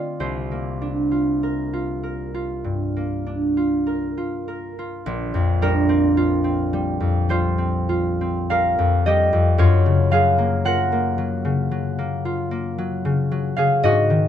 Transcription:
0.00 0.26 D3 soft
0.00 0.26 A3 soft
0.00 3.50 C4 soft
0.00 1.10 F4 soft
0.00 0.15 A#4 medium
0.00 0.19 C5 medium
0.00 3.50 D5 medium
0.20 4.10 C2 soft
0.20 4.10 C5 medium
0.51 2.95 A#3 soft
0.82 3.25 D4 soft
1.11 1.72 F4 soft
1.43 2.02 A#4 soft
1.73 2.33 F4 soft
2.03 3.86 A#4 soft
2.34 3.56 F4 soft
2.64 5.08 G2 soft
2.96 6.86 A#3 soft
3.26 5.62 D4 soft
3.57 4.16 F4 soft
3.87 4.47 A#4 soft
4.17 4.77 F4 soft
4.48 5.61 A#4 soft
4.79 6.16 F4 soft
5.06 8.96 A#1 medium
5.34 6.99 F2 medium
5.62 6.72 G3 medium
5.62 9.53 D4 medium
5.62 8.50 A#4 medium
5.89 6.43 C4 medium
6.17 7.30 F4 medium
6.44 7.57 C4 soft
6.73 7.28 G3 medium
7.00 8.77 F2 soft
7.29 8.49 G3 medium
7.29 7.88 F4 medium
7.29 9.63 C5 medium
7.58 8.20 C4 soft
7.89 9.58 F4 medium
8.21 9.63 C4 medium
8.50 9.05 G3 medium
8.50 10.66 A#4 medium
8.50 10.10 F5 medium
8.79 9.31 F2 soft
9.06 9.63 G3 medium
9.06 9.63 G4 medium
9.06 9.96 D#5 medium
9.33 9.63 F2 medium
9.58 13.48 F#2 medium
9.58 10.64 F4 medium
9.58 13.49 C#5 medium
9.86 11.43 C#3 medium
10.11 11.17 F#3 medium
10.11 13.57 G#4 medium
10.11 13.55 F5 medium
10.38 10.91 A#3 medium
10.65 12.24 F4 medium
10.65 14.28 A#4 medium
10.65 14.28 F#5 medium
10.92 11.97 A#3 medium
11.18 11.70 F#3 medium
11.45 13.04 C#3 soft
11.71 12.77 F#3 medium
11.98 12.50 A#3 medium
12.25 13.90 F4 medium
12.51 14.28 A#3 medium
12.78 13.30 F#3 medium
13.05 13.56 C#3 medium
13.31 14.28 F#3 medium
13.57 13.89 C#3 medium
13.57 14.28 G#4 medium
13.57 14.03 F5 medium
13.83 14.28 G#2 medium
13.83 14.28 F#4 medium
13.83 14.28 D#5 loud
14.10 14.28 D#3 medium

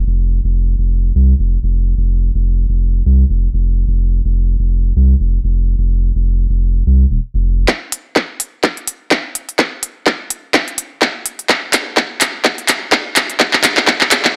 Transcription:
0.07 0.40 F1 loud
0.44 0.75 F1 medium
0.78 1.11 F1 medium
1.15 1.34 C2 medium
1.39 1.58 F1 medium
1.63 1.94 F1 medium
1.97 2.30 F1 loud
2.34 2.65 F1 loud
2.69 3.02 F1 medium
3.06 3.24 C2 medium
3.30 3.48 F1 medium
3.53 3.84 F1 medium
3.87 4.21 F1 medium
4.25 4.56 F1 loud
4.59 4.92 F1 medium
4.96 5.15 C2 medium
5.20 5.39 F1 medium
5.44 5.75 F1 medium
5.78 6.11 F1 loud
6.15 6.46 F1 medium
6.49 6.82 F1 medium
6.87 7.05 C2 medium
7.10 7.19 D#1 medium
7.34 7.65 F1 loud
7.68 kick loud
7.68 clap soft
7.92 open hi-hat medium
8.16 kick loud
8.16 clap soft
8.40 open hi-hat medium
8.64 kick loud
8.64 clap soft
8.77 open hi-hat soft
8.87 open hi-hat medium
9.11 kick loud
9.11 clap medium
9.35 open hi-hat medium
9.49 open hi-hat soft
9.59 kick loud
9.59 clap medium
9.83 open hi-hat loud
10.06 kick loud
10.06 clap medium
10.30 open hi-hat medium
10.54 kick loud
10.54 clap medium
10.68 open hi-hat soft
10.78 open hi-hat medium
11.02 kick loud
11.02 clap medium
11.26 open hi-hat medium
11.39 open hi-hat soft
11.49 kick loud
11.49 clap medium
11.73 clap medium
11.73 open hi-hat loud
11.97 kick loud
11.97 clap medium
12.21 clap medium
12.21 open hi-hat loud
12.45 kick loud
12.45 clap medium
12.58 open hi-hat soft
12.68 clap medium
12.68 open hi-hat loud
12.92 kick loud
12.92 clap medium
13.16 clap medium
13.16 open hi-hat medium
13.30 open hi-hat soft
13.40 kick loud
13.40 clap medium
13.53 clap medium
13.64 clap loud
13.64 open hi-hat loud
13.77 clap medium
13.87 kick loud
13.87 clap medium
14.01 clap medium
14.11 clap loud
14.11 open hi-hat loud
14.25 clap medium

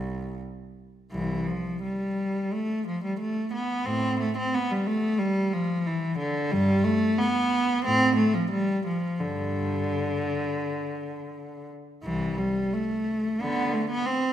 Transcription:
0.00 0.39 C2 soft
1.12 1.45 C2 soft
1.12 1.45 E3 medium
1.48 1.83 F3 medium
1.83 2.51 G3 medium
2.53 2.86 A3 medium
2.87 3.03 F3 medium
3.04 3.20 G3 soft
3.20 3.52 A3 medium
3.54 3.86 B3 medium
3.86 4.17 A2 medium
3.86 4.19 C4 medium
4.20 4.36 A3 medium
4.38 4.53 C4 medium
4.54 4.70 B3 medium
4.72 4.87 G3 medium
4.87 5.20 A3 medium
5.19 5.53 G3 medium
5.53 5.86 F3 medium
5.87 6.20 E3 medium
6.19 6.52 D3 medium
6.52 6.83 G2 medium
6.52 6.86 G3 medium
6.84 7.18 A3 medium
7.19 7.85 B3 medium
7.85 8.16 A2 medium
7.85 8.18 C4 medium
8.16 8.34 A3 medium
8.34 8.52 F3 medium
8.51 8.85 G3 medium
8.87 9.21 F3 medium
9.21 10.24 G2 soft
9.21 11.69 D3 medium
12.04 12.36 C2 soft
12.04 12.36 E3 medium
12.38 12.73 G3 medium
12.74 13.42 A3 medium
13.41 13.73 D3 medium
13.41 13.75 B3 medium
13.74 13.91 A3 medium
13.90 14.07 B3 medium
14.06 14.33 C4 medium

